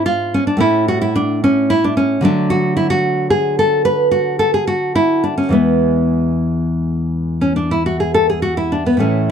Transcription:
0.00 0.56 G#2 medium
0.00 0.57 B3 soft
0.06 0.33 F4 medium
0.34 0.47 C#4 medium
0.47 0.60 D4 medium
0.57 2.18 A2 medium
0.57 2.19 A3 soft
0.57 1.15 C#4 soft
0.57 0.88 E4 medium
0.88 1.01 F#4 medium
1.01 1.16 E4 medium
1.16 1.43 D4 medium
1.44 1.70 C#4 medium
1.70 1.84 E4 medium
1.84 1.97 D4 medium
1.97 2.23 C#4 medium
2.21 5.47 D3 medium
2.21 5.47 F#3 soft
2.21 5.48 A3 soft
2.21 2.50 D4 medium
2.50 2.76 F#4 medium
2.77 2.90 E4 medium
2.90 3.29 F#4 medium
3.30 3.56 G#4 medium
3.59 3.84 A4 medium
3.85 4.11 B4 medium
4.11 4.38 F#4 medium
4.39 4.53 A4 medium
4.54 4.67 G#4 medium
4.67 4.95 F#4 medium
4.95 5.23 E4 medium
5.24 5.37 D4 medium
5.38 5.52 C#4 medium
5.49 8.95 E2 soft
5.49 8.95 E3 soft
5.49 8.96 G#3 soft
5.49 7.37 B3 medium
7.41 7.56 C#4 medium
7.56 7.70 D4 medium
7.71 7.85 E4 medium
7.86 8.00 F#4 medium
8.00 8.14 G#4 medium
8.14 8.29 A4 medium
8.30 8.42 G#4 medium
8.42 8.57 F#4 medium
8.57 8.72 E4 medium
8.72 8.86 D4 medium
8.86 9.00 B3 medium
8.97 9.31 A2 soft
8.97 9.31 E3 soft
8.97 9.31 A3 soft
8.97 9.28 C#4 medium

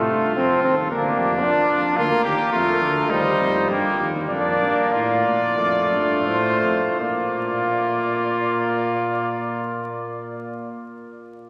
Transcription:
0.00 0.10 A2 medium
0.00 0.36 A3 loud
0.00 0.35 F4 medium
0.00 0.88 F4 medium
0.11 0.39 G2 medium
0.36 0.63 F2 medium
0.36 0.63 C4 loud
0.36 0.89 A4 medium
0.64 0.90 D#2 medium
0.64 0.76 C4 medium
0.90 1.16 D2 medium
0.90 1.44 A#3 loud
0.90 1.98 D4 loud
0.90 1.02 A#4 medium
1.17 1.43 F2 medium
1.17 1.46 G4 medium
1.43 1.97 F2 medium
1.43 1.97 D4 loud
1.43 1.98 F4 medium
1.97 2.11 D2 medium
1.97 2.52 A#3 loud
1.97 2.24 F4 loud
1.97 2.06 A#4 medium
2.04 2.12 A4 medium
2.10 3.10 A#4 medium
2.24 2.38 D#2 medium
2.24 2.52 G4 loud
2.53 2.84 F2 medium
2.53 3.12 A3 loud
2.53 3.11 F4 loud
2.82 3.10 D2 medium
3.10 3.39 D#2 medium
3.10 3.98 G3 loud
3.10 3.69 D#4 loud
3.10 3.71 C5 loud
3.40 3.69 F2 medium
3.69 3.83 G2 medium
3.69 4.07 A#3 loud
3.69 4.08 G4 medium
4.00 4.29 D#2 medium
4.29 4.60 F2 medium
4.29 5.54 A#3 loud
4.29 4.94 D4 medium
4.29 4.88 D5 medium
4.61 4.75 G2 medium
4.92 5.24 A2 medium
4.92 5.58 F4 medium
4.92 6.24 D5 loud
5.26 5.58 A#2 medium
5.58 5.95 F2 medium
5.58 6.97 A3 medium
5.58 6.98 F4 loud
5.93 6.29 G2 medium
6.27 6.64 A2 medium
6.27 6.99 C5 medium
6.64 6.80 F2 medium
7.00 10.75 A#2 medium
7.00 10.74 A#3 medium
7.00 10.74 F4 medium
7.00 10.74 D5 medium

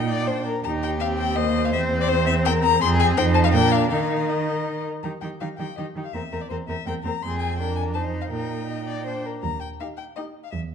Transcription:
0.00 0.46 A#2 medium
0.00 0.29 D#4 medium
0.00 0.44 G5 loud
0.09 0.29 D5 medium
0.27 0.46 D4 medium
0.27 0.46 C5 medium
0.47 0.64 A#4 medium
0.64 1.75 D#2 medium
0.64 0.99 D#4 medium
0.64 1.39 G4 medium
0.64 0.71 A#5 medium
0.83 0.90 G5 loud
1.00 1.39 C4 medium
1.00 1.07 F5 loud
1.19 1.38 G5 loud
1.36 1.73 A#3 medium
1.36 2.47 C5 medium
1.36 1.66 D#5 loud
1.65 1.72 F5 loud
1.73 2.81 E2 loud
1.73 2.80 C4 loud
1.73 1.81 E5 loud
2.01 2.10 D5 loud
2.09 2.26 C5 loud
2.26 2.34 E5 loud
2.45 2.81 A#4 medium
2.45 2.53 G5 loud
2.64 2.81 A#5 loud
2.81 3.17 F2 loud
2.81 3.19 C4 loud
2.81 3.19 G#4 loud
2.81 2.89 C6 loud
3.00 3.07 G#5 loud
3.17 3.55 F2 loud
3.17 3.56 D#4 medium
3.17 3.54 C5 medium
3.17 3.25 G5 loud
3.34 3.38 A5 loud
3.44 3.48 F5 loud
3.53 3.93 A#2 loud
3.53 3.93 D4 loud
3.53 3.91 A#4 medium
3.53 3.73 G5 loud
3.71 3.90 F5 loud
3.90 4.86 D#3 medium
3.90 4.86 D#4 medium
3.90 4.85 A#4 medium
3.90 4.31 F5 medium
4.29 4.86 D#5 medium
5.03 5.11 D#3 soft
5.03 5.12 D#4 soft
5.03 5.12 G4 soft
5.03 5.11 A#5 medium
5.21 5.30 D#3 soft
5.21 5.30 D#4 soft
5.21 5.31 G4 soft
5.21 5.29 G5 medium
5.41 5.48 D#3 soft
5.41 5.48 D#4 soft
5.41 5.48 G4 soft
5.41 5.48 F5 medium
5.58 5.66 D#3 soft
5.58 5.67 D#4 soft
5.58 5.67 G4 soft
5.58 5.76 G5 medium
5.77 5.85 D#3 soft
5.77 5.86 D#4 soft
5.77 5.85 G4 soft
5.77 5.85 D#5 medium
5.95 6.03 D#3 soft
5.95 6.04 D#4 soft
5.95 6.04 G4 soft
6.04 6.15 F5 medium
6.13 6.21 E2 medium
6.13 6.22 C4 soft
6.13 6.21 A#4 soft
6.13 6.43 E5 medium
6.32 6.39 E2 soft
6.32 6.40 C4 soft
6.32 6.40 A#4 soft
6.41 6.49 D5 medium
6.49 6.57 E2 medium
6.49 6.58 C4 soft
6.49 6.58 A#4 soft
6.49 6.57 C5 medium
6.68 6.75 E2 medium
6.68 6.76 C4 soft
6.68 6.76 A#4 medium
6.68 6.86 E5 medium
6.86 6.94 E2 medium
6.86 6.94 C4 medium
6.86 6.95 A#4 soft
6.86 6.94 G5 medium
7.04 7.11 E2 medium
7.04 7.12 C4 medium
7.04 7.14 A#4 medium
7.04 7.24 A#5 medium
7.22 8.28 F2 medium
7.22 7.61 C4 medium
7.22 7.57 G#4 medium
7.22 7.38 C6 medium
7.39 7.58 G#5 medium
7.58 7.97 D4 medium
7.58 7.97 A#4 medium
7.58 7.76 G5 medium
7.76 7.84 G#5 medium
7.94 8.32 D#4 medium
7.94 8.30 C5 medium
7.94 8.02 A5 medium
8.21 8.25 F5 medium
8.30 9.23 A#2 soft
8.30 9.08 D#4 medium
8.30 8.64 A#4 soft
8.30 9.23 G5 medium
8.69 8.76 D#5 medium
8.87 9.06 D5 medium
9.06 9.25 D4 soft
9.06 9.27 C5 soft
9.26 9.44 A#4 soft
9.43 9.73 D#2 medium
9.43 9.60 A#5 medium
9.61 9.68 G5 medium
9.80 10.08 D#4 soft
9.80 10.08 G4 soft
9.80 9.88 F5 medium
9.97 10.05 G5 medium
10.16 10.44 D#4 medium
10.16 10.45 G4 soft
10.16 10.24 D#5 medium
10.44 10.51 F5 medium
10.52 10.75 E2 medium
10.52 10.60 E5 medium

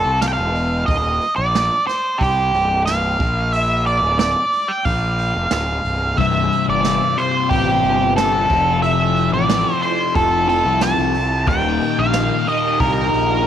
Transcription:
0.00 0.19 A4 medium
0.05 0.35 C2 medium
0.21 0.27 F5 medium
0.21 snare loud
0.21 open hi-hat medium
0.28 0.33 G5 medium
0.33 0.83 F5 medium
0.39 0.84 E1 medium
0.55 open hi-hat soft
0.86 1.19 D#1 medium
0.86 1.36 D#5 medium
0.86 kick loud
0.86 open hi-hat medium
1.21 open hi-hat soft
1.36 1.68 A#1 medium
1.36 1.87 D5 medium
1.55 snare loud
1.55 open hi-hat medium
1.87 2.21 C5 medium
1.87 snare soft
1.87 open hi-hat soft
2.18 2.51 C2 medium
2.18 2.82 G4 medium
2.18 kick loud
2.18 open hi-hat medium
2.54 3.16 C1 medium
2.54 open hi-hat soft
2.86 3.54 F5 medium
2.86 snare medium
2.86 open hi-hat medium
3.20 3.99 A#1 medium
3.20 kick medium
3.20 open hi-hat soft
3.53 3.86 E5 medium
3.53 open hi-hat medium
3.86 4.18 D5 medium
3.86 open hi-hat soft
4.02 4.33 D1 medium
4.19 4.71 D5 medium
4.19 snare loud
4.19 open hi-hat medium
4.52 open hi-hat medium
4.68 4.85 G5 medium
4.85 5.32 A#1 medium
4.85 5.52 F5 medium
4.85 kick loud
4.85 open hi-hat medium
5.18 open hi-hat soft
5.35 5.50 F1 medium
5.51 5.81 D1 medium
5.51 6.21 F5 medium
5.51 snare loud
5.51 open hi-hat medium
5.84 6.14 C1 medium
5.84 open hi-hat soft
6.16 6.49 C1 medium
6.16 7.15 C2 medium
6.16 7.16 G2 medium
6.16 8.47 F4 medium
6.16 8.47 G4 medium
6.16 8.47 C5 medium
6.16 6.64 E5 medium
6.16 kick loud
6.16 open hi-hat medium
6.21 7.15 C3 medium
6.52 open hi-hat soft
6.68 6.99 G1 medium
6.68 7.20 D5 medium
6.84 snare medium
6.84 open hi-hat medium
7.16 8.15 C2 medium
7.16 8.15 G2 medium
7.16 8.14 C3 medium
7.16 7.48 C5 medium
7.16 open hi-hat soft
7.49 7.82 A1 medium
7.49 8.12 G4 medium
7.49 kick loud
7.49 open hi-hat medium
7.83 8.46 G1 medium
7.83 open hi-hat soft
8.16 8.48 C2 medium
8.16 8.49 G2 medium
8.16 8.50 C3 medium
8.16 8.79 A4 medium
8.16 snare medium
8.16 open hi-hat medium
8.49 9.29 F1 medium
8.49 9.47 F2 medium
8.49 9.48 C3 medium
8.49 11.45 E4 medium
8.49 11.45 F4 medium
8.49 11.45 A4 medium
8.49 kick medium
8.49 open hi-hat soft
8.53 9.49 F3 medium
8.82 9.29 E5 loud
8.82 open hi-hat medium
9.16 open hi-hat soft
9.32 9.63 A1 medium
9.32 9.84 D5 medium
9.48 10.46 F2 medium
9.48 10.47 C3 medium
9.48 10.46 F3 medium
9.48 snare loud
9.48 open hi-hat medium
9.82 10.15 C5 medium
9.82 open hi-hat soft
10.15 10.62 F1 medium
10.15 10.48 A4 medium
10.15 kick loud
10.15 open hi-hat medium
10.47 11.14 F2 medium
10.47 11.13 C3 medium
10.47 11.12 F3 medium
10.47 10.83 A4 medium
10.47 open hi-hat soft
10.65 10.96 C2 medium
10.81 11.48 A5 loud
10.81 snare medium
10.81 open hi-hat medium
10.98 11.44 C2 medium
11.14 open hi-hat soft
11.46 11.78 D#1 medium
11.46 12.45 D#2 medium
11.46 12.46 A#2 medium
11.46 13.47 D#4 medium
11.46 13.47 G4 medium
11.46 13.47 A#4 medium
11.46 11.99 G5 loud
11.46 kick loud
11.46 open hi-hat medium
11.51 12.45 D#3 medium
11.81 open hi-hat soft
11.99 12.29 A#1 medium
11.99 12.48 F5 medium
12.13 snare loud
12.13 open hi-hat medium
12.46 13.44 D#2 medium
12.46 13.45 A#2 medium
12.46 13.44 D#3 medium
12.46 12.79 D#5 medium
12.46 open hi-hat soft
12.80 13.11 C2 medium
12.80 13.47 A#4 medium
12.80 kick loud
12.80 open hi-hat medium
13.13 13.47 A#1 medium
13.13 open hi-hat soft

